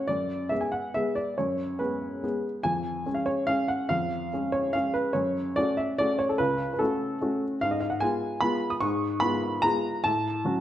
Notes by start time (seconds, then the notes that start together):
0.07 F#2 D5
0.49 G#3 B3 G#4 E5
0.61 G#5
0.72 F#5
0.94 G#3 B3 G#4 E5
1.15 D5
1.38 F#2 C#5
1.79 G#3 B3 G#4 B4
2.23 G#3 B3 G#4
2.63 F2 G#5
3.06 G#3 C#4 G#4
3.14 F5
3.26 C#5
3.47 G#3 C#4 G#4 F5
3.68 F#5
3.89 F2 F5
4.33 G#3 C#4 G#4
4.52 C#5
4.73 G#3 C#4 G#4 F5
4.94 B4
5.13 F#2 C#5
5.56 A3 C#4 F#4 D5
5.77 E5
5.98 A3 C#4 F#4 D5
6.19 C#5
6.29 A4
6.38 C#2 B4
6.74 B4
6.79 A3 C#4 F#4 A4
7.21 A3 C#4 F#4
7.61 G#2 F5
7.71 D#5
7.80 F5
7.90 F#5
8.00 G#3 B3 F4 G#5
8.41 G#3 B3 F4 B5
8.70 D#6
8.81 G#2 C#6
9.20 G#3 B3 F4 B5
9.62 G#3 B3 F4 A#5
10.04 A2 A5
10.45 F#3 C#4 F#4